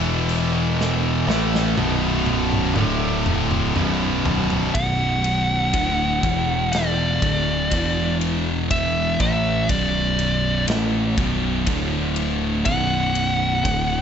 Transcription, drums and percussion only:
0.29 crash
0.81 snare
1.30 snare
1.55 snare
1.78 high tom
2.26 high tom
2.51 mid tom
2.76 mid tom
3.26 mid tom
3.51 mid tom
3.76 mid tom
4.25 floor tom
4.50 floor tom
4.75 kick, ride
5.24 ride
5.73 kick, ride
6.23 kick, ride
6.73 snare, ride
7.22 kick, ride
7.71 kick, ride
8.21 ride
8.71 kick, ride
9.20 kick, ride
9.69 kick, ride
10.19 ride
10.68 snare, ride
11.17 kick, ride
11.66 kick, ride
12.16 ride
12.65 kick, ride
13.15 ride
13.65 kick, ride

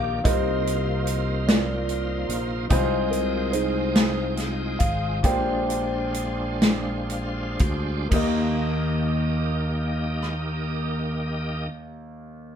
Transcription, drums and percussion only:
0.25 kick, closed hi-hat
0.67 closed hi-hat
1.07 closed hi-hat
1.48 snare, closed hi-hat
1.89 closed hi-hat
2.30 closed hi-hat
2.70 kick, closed hi-hat
3.13 closed hi-hat
3.53 closed hi-hat
3.95 snare, closed hi-hat
4.37 snare, closed hi-hat
4.80 kick, closed hi-hat
5.24 kick, closed hi-hat
5.70 closed hi-hat
6.14 closed hi-hat
6.62 snare, closed hi-hat
7.10 closed hi-hat
7.59 kick, closed hi-hat
8.12 kick, crash
10.23 cross-stick

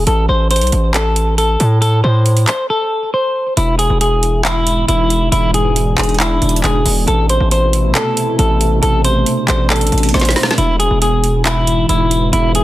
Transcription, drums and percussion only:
0.07 closed hi-hat
0.51 closed hi-hat
0.56 closed hi-hat
0.61 closed hi-hat
0.67 closed hi-hat
0.72 closed hi-hat
0.94 clap, closed hi-hat
1.16 closed hi-hat
1.38 closed hi-hat
1.60 closed hi-hat
1.82 closed hi-hat
2.26 closed hi-hat
2.37 closed hi-hat
2.48 clap, closed hi-hat
3.57 closed hi-hat
3.79 closed hi-hat
4.01 closed hi-hat
4.23 closed hi-hat
4.45 clap, closed hi-hat
4.67 closed hi-hat
4.89 closed hi-hat
5.10 closed hi-hat
5.32 closed hi-hat
5.54 closed hi-hat
5.76 closed hi-hat
5.98 clap, closed hi-hat
6.03 closed hi-hat
6.09 closed hi-hat
6.14 closed hi-hat
6.20 clap, closed hi-hat
6.42 closed hi-hat
6.49 closed hi-hat
6.56 closed hi-hat
6.64 clap, closed hi-hat
6.86 open hi-hat
7.08 closed hi-hat
7.29 closed hi-hat
7.51 closed hi-hat
7.73 closed hi-hat
7.95 clap, closed hi-hat
8.17 closed hi-hat
8.39 closed hi-hat
8.61 closed hi-hat
8.83 closed hi-hat
9.05 closed hi-hat
9.26 closed hi-hat
9.48 clap, closed hi-hat
9.70 clap, closed hi-hat
9.76 closed hi-hat
9.81 closed hi-hat
9.87 closed hi-hat
9.92 closed hi-hat
9.98 closed hi-hat
10.03 closed hi-hat
10.09 closed hi-hat
10.14 snare, closed hi-hat
10.20 snare, closed hi-hat
10.25 snare, closed hi-hat
10.31 closed hi-hat
10.36 snare, open hi-hat
10.43 snare
10.51 snare
10.58 closed hi-hat
10.80 closed hi-hat
11.02 closed hi-hat
11.24 closed hi-hat
11.45 clap, closed hi-hat
11.67 closed hi-hat
11.89 closed hi-hat
12.11 closed hi-hat
12.33 closed hi-hat
12.55 closed hi-hat

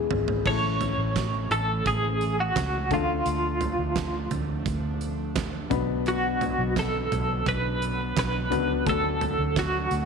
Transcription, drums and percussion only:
0.11 floor tom
0.28 floor tom
0.46 kick, crash
0.81 closed hi-hat, floor tom
1.16 kick, snare, clap, closed hi-hat
1.51 closed hi-hat
1.86 kick, closed hi-hat
2.21 closed hi-hat
2.56 kick, snare, clap, closed hi-hat
2.91 kick, closed hi-hat, floor tom
3.26 closed hi-hat
3.61 closed hi-hat, floor tom
3.96 kick, snare, clap, closed hi-hat
4.31 closed hi-hat, floor tom
4.66 kick, closed hi-hat
5.01 closed hi-hat
5.36 kick, snare, clap, closed hi-hat
5.71 kick, closed hi-hat, floor tom
6.06 closed hi-hat
6.41 closed hi-hat, floor tom
6.76 kick, snare, clap, closed hi-hat
7.12 closed hi-hat, floor tom
7.46 kick, closed hi-hat
7.82 closed hi-hat
8.17 kick, snare, clap, closed hi-hat
8.52 closed hi-hat, floor tom
8.86 kick, closed hi-hat
9.21 closed hi-hat, floor tom
9.56 kick, snare, clap, closed hi-hat
9.91 closed hi-hat

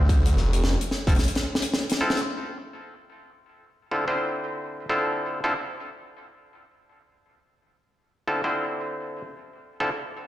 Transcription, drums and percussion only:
0.09 kick, closed hi-hat
0.25 closed hi-hat
0.37 snare
0.53 closed hi-hat
0.64 snare
0.81 closed hi-hat
0.91 snare
1.07 kick, snare, closed hi-hat
1.09 closed hi-hat
1.15 closed hi-hat
1.19 snare, closed hi-hat
1.24 closed hi-hat
1.28 closed hi-hat
1.35 snare, closed hi-hat
1.55 snare
1.62 closed hi-hat
1.74 snare
1.89 snare, closed hi-hat
2.10 snare
2.17 closed hi-hat

